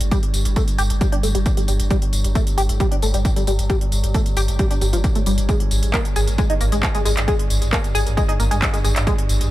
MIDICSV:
0, 0, Header, 1, 5, 480
1, 0, Start_track
1, 0, Tempo, 447761
1, 122, Time_signature, 4, 2, 24, 8
1, 10194, End_track
2, 0, Start_track
2, 0, Title_t, "Synth arpeggio sound"
2, 0, Program_c, 0, 84
2, 122, Note_on_c, 0, 55, 105
2, 191, Note_off_c, 0, 55, 0
2, 603, Note_on_c, 0, 57, 103
2, 671, Note_off_c, 0, 57, 0
2, 842, Note_on_c, 0, 67, 106
2, 888, Note_off_c, 0, 67, 0
2, 1082, Note_on_c, 0, 55, 101
2, 1151, Note_off_c, 0, 55, 0
2, 1206, Note_on_c, 0, 62, 76
2, 1249, Note_off_c, 0, 62, 0
2, 1323, Note_on_c, 0, 57, 75
2, 1368, Note_off_c, 0, 57, 0
2, 1446, Note_on_c, 0, 55, 73
2, 1489, Note_off_c, 0, 55, 0
2, 1687, Note_on_c, 0, 55, 76
2, 1751, Note_off_c, 0, 55, 0
2, 1802, Note_on_c, 0, 55, 79
2, 1848, Note_off_c, 0, 55, 0
2, 2044, Note_on_c, 0, 55, 106
2, 2112, Note_off_c, 0, 55, 0
2, 2522, Note_on_c, 0, 57, 101
2, 2590, Note_off_c, 0, 57, 0
2, 2762, Note_on_c, 0, 67, 108
2, 2808, Note_off_c, 0, 67, 0
2, 3002, Note_on_c, 0, 55, 100
2, 3071, Note_off_c, 0, 55, 0
2, 3127, Note_on_c, 0, 62, 75
2, 3170, Note_off_c, 0, 62, 0
2, 3244, Note_on_c, 0, 57, 75
2, 3289, Note_off_c, 0, 57, 0
2, 3367, Note_on_c, 0, 55, 76
2, 3410, Note_off_c, 0, 55, 0
2, 3607, Note_on_c, 0, 55, 75
2, 3671, Note_off_c, 0, 55, 0
2, 3723, Note_on_c, 0, 55, 79
2, 3769, Note_off_c, 0, 55, 0
2, 3964, Note_on_c, 0, 55, 101
2, 4031, Note_off_c, 0, 55, 0
2, 4443, Note_on_c, 0, 57, 104
2, 4511, Note_off_c, 0, 57, 0
2, 4682, Note_on_c, 0, 67, 101
2, 4728, Note_off_c, 0, 67, 0
2, 4921, Note_on_c, 0, 55, 102
2, 4990, Note_off_c, 0, 55, 0
2, 5045, Note_on_c, 0, 62, 76
2, 5089, Note_off_c, 0, 62, 0
2, 5162, Note_on_c, 0, 55, 72
2, 5208, Note_off_c, 0, 55, 0
2, 5285, Note_on_c, 0, 53, 78
2, 5329, Note_off_c, 0, 53, 0
2, 5526, Note_on_c, 0, 57, 80
2, 5552, Note_off_c, 0, 57, 0
2, 5642, Note_on_c, 0, 55, 76
2, 5711, Note_off_c, 0, 55, 0
2, 5882, Note_on_c, 0, 56, 97
2, 5951, Note_off_c, 0, 56, 0
2, 6363, Note_on_c, 0, 58, 102
2, 6431, Note_off_c, 0, 58, 0
2, 6603, Note_on_c, 0, 68, 102
2, 6648, Note_off_c, 0, 68, 0
2, 6843, Note_on_c, 0, 56, 97
2, 6911, Note_off_c, 0, 56, 0
2, 6966, Note_on_c, 0, 63, 78
2, 7009, Note_off_c, 0, 63, 0
2, 7082, Note_on_c, 0, 58, 75
2, 7128, Note_off_c, 0, 58, 0
2, 7207, Note_on_c, 0, 56, 74
2, 7249, Note_off_c, 0, 56, 0
2, 7446, Note_on_c, 0, 56, 80
2, 7510, Note_off_c, 0, 56, 0
2, 7561, Note_on_c, 0, 56, 79
2, 7607, Note_off_c, 0, 56, 0
2, 7802, Note_on_c, 0, 56, 102
2, 7870, Note_off_c, 0, 56, 0
2, 8281, Note_on_c, 0, 58, 97
2, 8350, Note_off_c, 0, 58, 0
2, 8520, Note_on_c, 0, 68, 110
2, 8567, Note_off_c, 0, 68, 0
2, 8760, Note_on_c, 0, 56, 97
2, 8829, Note_off_c, 0, 56, 0
2, 8883, Note_on_c, 0, 63, 80
2, 8928, Note_off_c, 0, 63, 0
2, 9001, Note_on_c, 0, 58, 72
2, 9047, Note_off_c, 0, 58, 0
2, 9124, Note_on_c, 0, 56, 80
2, 9168, Note_off_c, 0, 56, 0
2, 9364, Note_on_c, 0, 56, 79
2, 9430, Note_off_c, 0, 56, 0
2, 9481, Note_on_c, 0, 56, 76
2, 9527, Note_off_c, 0, 56, 0
2, 9721, Note_on_c, 0, 56, 108
2, 9790, Note_off_c, 0, 56, 0
2, 10194, End_track
3, 0, Start_track
3, 0, Title_t, "Synth drone"
3, 0, Program_c, 1, 95
3, 0, Note_on_c, 1, 43, 80
3, 0, Note_on_c, 1, 55, 79
3, 10194, Note_off_c, 1, 43, 0
3, 10194, Note_off_c, 1, 55, 0
3, 10194, End_track
4, 0, Start_track
4, 0, Title_t, "Sub bass"
4, 0, Program_c, 2, 38
4, 7, Note_on_c, 2, 31, 83
4, 121, Note_off_c, 2, 31, 0
4, 363, Note_on_c, 2, 31, 96
4, 481, Note_off_c, 2, 31, 0
4, 487, Note_on_c, 2, 31, 82
4, 601, Note_off_c, 2, 31, 0
4, 843, Note_on_c, 2, 31, 106
4, 960, Note_off_c, 2, 31, 0
4, 967, Note_on_c, 2, 31, 79
4, 1080, Note_off_c, 2, 31, 0
4, 1324, Note_on_c, 2, 31, 103
4, 1440, Note_off_c, 2, 31, 0
4, 1446, Note_on_c, 2, 31, 85
4, 1560, Note_off_c, 2, 31, 0
4, 1802, Note_on_c, 2, 31, 98
4, 1920, Note_off_c, 2, 31, 0
4, 1926, Note_on_c, 2, 31, 81
4, 2040, Note_off_c, 2, 31, 0
4, 2283, Note_on_c, 2, 31, 98
4, 2400, Note_off_c, 2, 31, 0
4, 2406, Note_on_c, 2, 31, 78
4, 2520, Note_off_c, 2, 31, 0
4, 2762, Note_on_c, 2, 31, 100
4, 2879, Note_off_c, 2, 31, 0
4, 2886, Note_on_c, 2, 31, 79
4, 3000, Note_off_c, 2, 31, 0
4, 3242, Note_on_c, 2, 31, 98
4, 3359, Note_off_c, 2, 31, 0
4, 3366, Note_on_c, 2, 31, 82
4, 3480, Note_off_c, 2, 31, 0
4, 3722, Note_on_c, 2, 31, 100
4, 3839, Note_off_c, 2, 31, 0
4, 3846, Note_on_c, 2, 31, 82
4, 3960, Note_off_c, 2, 31, 0
4, 4202, Note_on_c, 2, 31, 96
4, 4318, Note_off_c, 2, 31, 0
4, 4324, Note_on_c, 2, 31, 85
4, 4439, Note_off_c, 2, 31, 0
4, 4681, Note_on_c, 2, 31, 103
4, 4799, Note_off_c, 2, 31, 0
4, 4805, Note_on_c, 2, 31, 79
4, 4920, Note_off_c, 2, 31, 0
4, 5161, Note_on_c, 2, 31, 106
4, 5280, Note_off_c, 2, 31, 0
4, 5286, Note_on_c, 2, 31, 83
4, 5400, Note_off_c, 2, 31, 0
4, 5643, Note_on_c, 2, 31, 97
4, 5760, Note_off_c, 2, 31, 0
4, 5767, Note_on_c, 2, 31, 82
4, 5880, Note_off_c, 2, 31, 0
4, 6123, Note_on_c, 2, 32, 96
4, 6241, Note_off_c, 2, 32, 0
4, 6247, Note_on_c, 2, 32, 80
4, 6361, Note_off_c, 2, 32, 0
4, 6603, Note_on_c, 2, 32, 102
4, 6721, Note_off_c, 2, 32, 0
4, 6727, Note_on_c, 2, 32, 84
4, 6841, Note_off_c, 2, 32, 0
4, 7083, Note_on_c, 2, 32, 108
4, 7199, Note_off_c, 2, 32, 0
4, 7205, Note_on_c, 2, 32, 82
4, 7320, Note_off_c, 2, 32, 0
4, 7560, Note_on_c, 2, 32, 104
4, 7679, Note_off_c, 2, 32, 0
4, 7685, Note_on_c, 2, 32, 83
4, 7800, Note_off_c, 2, 32, 0
4, 8042, Note_on_c, 2, 32, 97
4, 8159, Note_off_c, 2, 32, 0
4, 8165, Note_on_c, 2, 32, 80
4, 8280, Note_off_c, 2, 32, 0
4, 8520, Note_on_c, 2, 32, 102
4, 8638, Note_off_c, 2, 32, 0
4, 8645, Note_on_c, 2, 32, 76
4, 8759, Note_off_c, 2, 32, 0
4, 9001, Note_on_c, 2, 32, 108
4, 9118, Note_off_c, 2, 32, 0
4, 9125, Note_on_c, 2, 32, 82
4, 9239, Note_off_c, 2, 32, 0
4, 9481, Note_on_c, 2, 32, 98
4, 9598, Note_off_c, 2, 32, 0
4, 9604, Note_on_c, 2, 32, 87
4, 9719, Note_off_c, 2, 32, 0
4, 9961, Note_on_c, 2, 32, 97
4, 10078, Note_off_c, 2, 32, 0
4, 10085, Note_on_c, 2, 32, 80
4, 10194, Note_off_c, 2, 32, 0
4, 10194, End_track
5, 0, Start_track
5, 0, Title_t, "Drums"
5, 6, Note_on_c, 9, 42, 74
5, 6, Note_on_c, 9, 54, 32
5, 113, Note_off_c, 9, 42, 0
5, 113, Note_off_c, 9, 54, 0
5, 123, Note_on_c, 9, 36, 126
5, 123, Note_on_c, 9, 42, 67
5, 123, Note_on_c, 9, 54, 37
5, 230, Note_off_c, 9, 36, 0
5, 230, Note_off_c, 9, 42, 0
5, 230, Note_off_c, 9, 54, 0
5, 245, Note_on_c, 9, 42, 63
5, 352, Note_off_c, 9, 42, 0
5, 362, Note_on_c, 9, 46, 111
5, 362, Note_on_c, 9, 54, 74
5, 469, Note_off_c, 9, 46, 0
5, 469, Note_off_c, 9, 54, 0
5, 486, Note_on_c, 9, 42, 68
5, 486, Note_on_c, 9, 54, 31
5, 593, Note_off_c, 9, 42, 0
5, 593, Note_off_c, 9, 54, 0
5, 602, Note_on_c, 9, 42, 66
5, 602, Note_on_c, 9, 54, 41
5, 603, Note_on_c, 9, 36, 127
5, 709, Note_off_c, 9, 42, 0
5, 709, Note_off_c, 9, 54, 0
5, 710, Note_off_c, 9, 36, 0
5, 725, Note_on_c, 9, 42, 68
5, 725, Note_on_c, 9, 54, 29
5, 833, Note_off_c, 9, 42, 0
5, 833, Note_off_c, 9, 54, 0
5, 841, Note_on_c, 9, 46, 116
5, 841, Note_on_c, 9, 54, 71
5, 948, Note_off_c, 9, 46, 0
5, 948, Note_off_c, 9, 54, 0
5, 966, Note_on_c, 9, 42, 70
5, 966, Note_on_c, 9, 54, 31
5, 1073, Note_off_c, 9, 42, 0
5, 1073, Note_off_c, 9, 54, 0
5, 1082, Note_on_c, 9, 42, 67
5, 1082, Note_on_c, 9, 54, 40
5, 1083, Note_on_c, 9, 36, 127
5, 1189, Note_off_c, 9, 42, 0
5, 1189, Note_off_c, 9, 54, 0
5, 1190, Note_off_c, 9, 36, 0
5, 1206, Note_on_c, 9, 42, 70
5, 1313, Note_off_c, 9, 42, 0
5, 1323, Note_on_c, 9, 46, 101
5, 1323, Note_on_c, 9, 54, 69
5, 1430, Note_off_c, 9, 46, 0
5, 1430, Note_off_c, 9, 54, 0
5, 1446, Note_on_c, 9, 42, 72
5, 1446, Note_on_c, 9, 54, 31
5, 1553, Note_off_c, 9, 42, 0
5, 1553, Note_off_c, 9, 54, 0
5, 1562, Note_on_c, 9, 42, 71
5, 1562, Note_on_c, 9, 54, 42
5, 1563, Note_on_c, 9, 36, 122
5, 1669, Note_off_c, 9, 42, 0
5, 1669, Note_off_c, 9, 54, 0
5, 1670, Note_off_c, 9, 36, 0
5, 1686, Note_on_c, 9, 42, 69
5, 1686, Note_on_c, 9, 54, 28
5, 1793, Note_off_c, 9, 42, 0
5, 1793, Note_off_c, 9, 54, 0
5, 1802, Note_on_c, 9, 46, 112
5, 1802, Note_on_c, 9, 54, 71
5, 1909, Note_off_c, 9, 46, 0
5, 1909, Note_off_c, 9, 54, 0
5, 1925, Note_on_c, 9, 42, 69
5, 1925, Note_on_c, 9, 54, 30
5, 2033, Note_off_c, 9, 42, 0
5, 2033, Note_off_c, 9, 54, 0
5, 2042, Note_on_c, 9, 42, 65
5, 2042, Note_on_c, 9, 54, 40
5, 2043, Note_on_c, 9, 36, 127
5, 2150, Note_off_c, 9, 36, 0
5, 2150, Note_off_c, 9, 42, 0
5, 2150, Note_off_c, 9, 54, 0
5, 2166, Note_on_c, 9, 42, 66
5, 2273, Note_off_c, 9, 42, 0
5, 2282, Note_on_c, 9, 46, 116
5, 2282, Note_on_c, 9, 54, 72
5, 2389, Note_off_c, 9, 46, 0
5, 2389, Note_off_c, 9, 54, 0
5, 2406, Note_on_c, 9, 42, 65
5, 2406, Note_on_c, 9, 54, 30
5, 2513, Note_off_c, 9, 42, 0
5, 2513, Note_off_c, 9, 54, 0
5, 2523, Note_on_c, 9, 36, 127
5, 2523, Note_on_c, 9, 42, 65
5, 2523, Note_on_c, 9, 54, 41
5, 2630, Note_off_c, 9, 36, 0
5, 2630, Note_off_c, 9, 42, 0
5, 2630, Note_off_c, 9, 54, 0
5, 2646, Note_on_c, 9, 42, 70
5, 2646, Note_on_c, 9, 54, 29
5, 2753, Note_off_c, 9, 42, 0
5, 2753, Note_off_c, 9, 54, 0
5, 2763, Note_on_c, 9, 46, 114
5, 2763, Note_on_c, 9, 54, 72
5, 2870, Note_off_c, 9, 46, 0
5, 2870, Note_off_c, 9, 54, 0
5, 2886, Note_on_c, 9, 42, 69
5, 2886, Note_on_c, 9, 54, 29
5, 2993, Note_off_c, 9, 42, 0
5, 2993, Note_off_c, 9, 54, 0
5, 3003, Note_on_c, 9, 36, 127
5, 3003, Note_on_c, 9, 42, 65
5, 3003, Note_on_c, 9, 54, 41
5, 3110, Note_off_c, 9, 36, 0
5, 3110, Note_off_c, 9, 42, 0
5, 3110, Note_off_c, 9, 54, 0
5, 3126, Note_on_c, 9, 42, 68
5, 3234, Note_off_c, 9, 42, 0
5, 3242, Note_on_c, 9, 46, 103
5, 3242, Note_on_c, 9, 54, 66
5, 3349, Note_off_c, 9, 46, 0
5, 3349, Note_off_c, 9, 54, 0
5, 3366, Note_on_c, 9, 42, 69
5, 3366, Note_on_c, 9, 54, 30
5, 3474, Note_off_c, 9, 42, 0
5, 3474, Note_off_c, 9, 54, 0
5, 3483, Note_on_c, 9, 36, 122
5, 3483, Note_on_c, 9, 42, 67
5, 3483, Note_on_c, 9, 54, 41
5, 3590, Note_off_c, 9, 36, 0
5, 3590, Note_off_c, 9, 42, 0
5, 3590, Note_off_c, 9, 54, 0
5, 3606, Note_on_c, 9, 42, 65
5, 3606, Note_on_c, 9, 54, 29
5, 3714, Note_off_c, 9, 42, 0
5, 3714, Note_off_c, 9, 54, 0
5, 3723, Note_on_c, 9, 46, 112
5, 3723, Note_on_c, 9, 54, 70
5, 3830, Note_off_c, 9, 46, 0
5, 3830, Note_off_c, 9, 54, 0
5, 3847, Note_on_c, 9, 42, 70
5, 3847, Note_on_c, 9, 54, 31
5, 3954, Note_off_c, 9, 42, 0
5, 3954, Note_off_c, 9, 54, 0
5, 3963, Note_on_c, 9, 36, 125
5, 3964, Note_on_c, 9, 42, 60
5, 3964, Note_on_c, 9, 54, 39
5, 4070, Note_off_c, 9, 36, 0
5, 4071, Note_off_c, 9, 42, 0
5, 4071, Note_off_c, 9, 54, 0
5, 4087, Note_on_c, 9, 42, 65
5, 4194, Note_off_c, 9, 42, 0
5, 4203, Note_on_c, 9, 46, 109
5, 4203, Note_on_c, 9, 54, 74
5, 4310, Note_off_c, 9, 46, 0
5, 4310, Note_off_c, 9, 54, 0
5, 4327, Note_on_c, 9, 42, 63
5, 4327, Note_on_c, 9, 54, 31
5, 4434, Note_off_c, 9, 42, 0
5, 4434, Note_off_c, 9, 54, 0
5, 4442, Note_on_c, 9, 42, 64
5, 4442, Note_on_c, 9, 54, 40
5, 4443, Note_on_c, 9, 36, 122
5, 4550, Note_off_c, 9, 36, 0
5, 4550, Note_off_c, 9, 42, 0
5, 4550, Note_off_c, 9, 54, 0
5, 4566, Note_on_c, 9, 42, 66
5, 4566, Note_on_c, 9, 54, 30
5, 4673, Note_off_c, 9, 42, 0
5, 4673, Note_off_c, 9, 54, 0
5, 4681, Note_on_c, 9, 46, 113
5, 4681, Note_on_c, 9, 54, 75
5, 4788, Note_off_c, 9, 46, 0
5, 4788, Note_off_c, 9, 54, 0
5, 4805, Note_on_c, 9, 42, 65
5, 4805, Note_on_c, 9, 54, 32
5, 4912, Note_off_c, 9, 42, 0
5, 4912, Note_off_c, 9, 54, 0
5, 4922, Note_on_c, 9, 42, 67
5, 4922, Note_on_c, 9, 54, 43
5, 4923, Note_on_c, 9, 36, 127
5, 5029, Note_off_c, 9, 42, 0
5, 5029, Note_off_c, 9, 54, 0
5, 5030, Note_off_c, 9, 36, 0
5, 5045, Note_on_c, 9, 42, 66
5, 5045, Note_on_c, 9, 54, 28
5, 5153, Note_off_c, 9, 42, 0
5, 5153, Note_off_c, 9, 54, 0
5, 5161, Note_on_c, 9, 46, 105
5, 5161, Note_on_c, 9, 54, 68
5, 5268, Note_off_c, 9, 46, 0
5, 5268, Note_off_c, 9, 54, 0
5, 5286, Note_on_c, 9, 42, 67
5, 5286, Note_on_c, 9, 54, 33
5, 5393, Note_off_c, 9, 42, 0
5, 5393, Note_off_c, 9, 54, 0
5, 5402, Note_on_c, 9, 42, 65
5, 5402, Note_on_c, 9, 54, 42
5, 5403, Note_on_c, 9, 36, 127
5, 5509, Note_off_c, 9, 42, 0
5, 5509, Note_off_c, 9, 54, 0
5, 5510, Note_off_c, 9, 36, 0
5, 5525, Note_on_c, 9, 42, 61
5, 5525, Note_on_c, 9, 54, 29
5, 5632, Note_off_c, 9, 42, 0
5, 5632, Note_off_c, 9, 54, 0
5, 5642, Note_on_c, 9, 46, 115
5, 5642, Note_on_c, 9, 54, 72
5, 5749, Note_off_c, 9, 46, 0
5, 5749, Note_off_c, 9, 54, 0
5, 5765, Note_on_c, 9, 42, 65
5, 5765, Note_on_c, 9, 54, 32
5, 5872, Note_off_c, 9, 42, 0
5, 5872, Note_off_c, 9, 54, 0
5, 5882, Note_on_c, 9, 42, 58
5, 5882, Note_on_c, 9, 54, 43
5, 5883, Note_on_c, 9, 36, 118
5, 5990, Note_off_c, 9, 36, 0
5, 5990, Note_off_c, 9, 42, 0
5, 5990, Note_off_c, 9, 54, 0
5, 6006, Note_on_c, 9, 42, 60
5, 6113, Note_off_c, 9, 42, 0
5, 6122, Note_on_c, 9, 46, 110
5, 6122, Note_on_c, 9, 54, 75
5, 6229, Note_off_c, 9, 46, 0
5, 6229, Note_off_c, 9, 54, 0
5, 6246, Note_on_c, 9, 42, 64
5, 6354, Note_off_c, 9, 42, 0
5, 6363, Note_on_c, 9, 36, 118
5, 6364, Note_on_c, 9, 39, 115
5, 6364, Note_on_c, 9, 42, 62
5, 6364, Note_on_c, 9, 54, 43
5, 6470, Note_off_c, 9, 36, 0
5, 6471, Note_off_c, 9, 39, 0
5, 6471, Note_off_c, 9, 42, 0
5, 6471, Note_off_c, 9, 54, 0
5, 6487, Note_on_c, 9, 42, 67
5, 6487, Note_on_c, 9, 54, 29
5, 6594, Note_off_c, 9, 42, 0
5, 6594, Note_off_c, 9, 54, 0
5, 6603, Note_on_c, 9, 46, 109
5, 6603, Note_on_c, 9, 54, 76
5, 6710, Note_off_c, 9, 46, 0
5, 6710, Note_off_c, 9, 54, 0
5, 6727, Note_on_c, 9, 42, 61
5, 6727, Note_on_c, 9, 54, 32
5, 6834, Note_off_c, 9, 42, 0
5, 6834, Note_off_c, 9, 54, 0
5, 6842, Note_on_c, 9, 42, 59
5, 6842, Note_on_c, 9, 54, 41
5, 6843, Note_on_c, 9, 36, 127
5, 6949, Note_off_c, 9, 42, 0
5, 6949, Note_off_c, 9, 54, 0
5, 6950, Note_off_c, 9, 36, 0
5, 6966, Note_on_c, 9, 42, 64
5, 7073, Note_off_c, 9, 42, 0
5, 7082, Note_on_c, 9, 46, 103
5, 7082, Note_on_c, 9, 54, 68
5, 7190, Note_off_c, 9, 46, 0
5, 7190, Note_off_c, 9, 54, 0
5, 7206, Note_on_c, 9, 42, 67
5, 7206, Note_on_c, 9, 54, 35
5, 7313, Note_off_c, 9, 42, 0
5, 7313, Note_off_c, 9, 54, 0
5, 7323, Note_on_c, 9, 36, 119
5, 7323, Note_on_c, 9, 39, 115
5, 7323, Note_on_c, 9, 42, 62
5, 7323, Note_on_c, 9, 54, 42
5, 7430, Note_off_c, 9, 36, 0
5, 7430, Note_off_c, 9, 39, 0
5, 7430, Note_off_c, 9, 42, 0
5, 7430, Note_off_c, 9, 54, 0
5, 7447, Note_on_c, 9, 42, 66
5, 7447, Note_on_c, 9, 54, 30
5, 7554, Note_off_c, 9, 42, 0
5, 7554, Note_off_c, 9, 54, 0
5, 7563, Note_on_c, 9, 46, 105
5, 7563, Note_on_c, 9, 54, 80
5, 7670, Note_off_c, 9, 46, 0
5, 7670, Note_off_c, 9, 54, 0
5, 7688, Note_on_c, 9, 39, 65
5, 7688, Note_on_c, 9, 42, 68
5, 7688, Note_on_c, 9, 54, 32
5, 7795, Note_off_c, 9, 39, 0
5, 7795, Note_off_c, 9, 42, 0
5, 7795, Note_off_c, 9, 54, 0
5, 7803, Note_on_c, 9, 36, 118
5, 7803, Note_on_c, 9, 42, 64
5, 7803, Note_on_c, 9, 54, 43
5, 7910, Note_off_c, 9, 36, 0
5, 7910, Note_off_c, 9, 42, 0
5, 7910, Note_off_c, 9, 54, 0
5, 7927, Note_on_c, 9, 42, 64
5, 8034, Note_off_c, 9, 42, 0
5, 8043, Note_on_c, 9, 46, 107
5, 8043, Note_on_c, 9, 54, 82
5, 8150, Note_off_c, 9, 46, 0
5, 8150, Note_off_c, 9, 54, 0
5, 8166, Note_on_c, 9, 42, 58
5, 8166, Note_on_c, 9, 54, 33
5, 8274, Note_off_c, 9, 42, 0
5, 8274, Note_off_c, 9, 54, 0
5, 8282, Note_on_c, 9, 36, 113
5, 8283, Note_on_c, 9, 39, 116
5, 8283, Note_on_c, 9, 42, 62
5, 8283, Note_on_c, 9, 54, 46
5, 8390, Note_off_c, 9, 36, 0
5, 8390, Note_off_c, 9, 39, 0
5, 8390, Note_off_c, 9, 42, 0
5, 8390, Note_off_c, 9, 54, 0
5, 8407, Note_on_c, 9, 42, 65
5, 8407, Note_on_c, 9, 54, 30
5, 8515, Note_off_c, 9, 42, 0
5, 8515, Note_off_c, 9, 54, 0
5, 8523, Note_on_c, 9, 46, 108
5, 8523, Note_on_c, 9, 54, 78
5, 8631, Note_off_c, 9, 46, 0
5, 8631, Note_off_c, 9, 54, 0
5, 8647, Note_on_c, 9, 42, 64
5, 8647, Note_on_c, 9, 54, 33
5, 8754, Note_off_c, 9, 42, 0
5, 8754, Note_off_c, 9, 54, 0
5, 8762, Note_on_c, 9, 36, 127
5, 8763, Note_on_c, 9, 42, 61
5, 8763, Note_on_c, 9, 54, 43
5, 8869, Note_off_c, 9, 36, 0
5, 8870, Note_off_c, 9, 42, 0
5, 8870, Note_off_c, 9, 54, 0
5, 8886, Note_on_c, 9, 42, 66
5, 8994, Note_off_c, 9, 42, 0
5, 9002, Note_on_c, 9, 46, 97
5, 9002, Note_on_c, 9, 54, 72
5, 9109, Note_off_c, 9, 46, 0
5, 9109, Note_off_c, 9, 54, 0
5, 9126, Note_on_c, 9, 42, 67
5, 9126, Note_on_c, 9, 54, 34
5, 9233, Note_off_c, 9, 42, 0
5, 9233, Note_off_c, 9, 54, 0
5, 9242, Note_on_c, 9, 36, 116
5, 9243, Note_on_c, 9, 39, 118
5, 9243, Note_on_c, 9, 42, 61
5, 9243, Note_on_c, 9, 54, 44
5, 9350, Note_off_c, 9, 36, 0
5, 9350, Note_off_c, 9, 39, 0
5, 9350, Note_off_c, 9, 42, 0
5, 9350, Note_off_c, 9, 54, 0
5, 9366, Note_on_c, 9, 42, 64
5, 9366, Note_on_c, 9, 54, 30
5, 9473, Note_off_c, 9, 42, 0
5, 9473, Note_off_c, 9, 54, 0
5, 9482, Note_on_c, 9, 46, 102
5, 9482, Note_on_c, 9, 54, 83
5, 9590, Note_off_c, 9, 46, 0
5, 9590, Note_off_c, 9, 54, 0
5, 9606, Note_on_c, 9, 39, 64
5, 9606, Note_on_c, 9, 42, 63
5, 9606, Note_on_c, 9, 54, 36
5, 9713, Note_off_c, 9, 39, 0
5, 9713, Note_off_c, 9, 42, 0
5, 9713, Note_off_c, 9, 54, 0
5, 9722, Note_on_c, 9, 36, 113
5, 9722, Note_on_c, 9, 42, 61
5, 9722, Note_on_c, 9, 54, 41
5, 9829, Note_off_c, 9, 36, 0
5, 9830, Note_off_c, 9, 42, 0
5, 9830, Note_off_c, 9, 54, 0
5, 9846, Note_on_c, 9, 42, 66
5, 9953, Note_off_c, 9, 42, 0
5, 9963, Note_on_c, 9, 46, 99
5, 9963, Note_on_c, 9, 54, 76
5, 10070, Note_off_c, 9, 46, 0
5, 10070, Note_off_c, 9, 54, 0
5, 10086, Note_on_c, 9, 42, 62
5, 10086, Note_on_c, 9, 54, 32
5, 10193, Note_off_c, 9, 42, 0
5, 10193, Note_off_c, 9, 54, 0
5, 10194, End_track
0, 0, End_of_file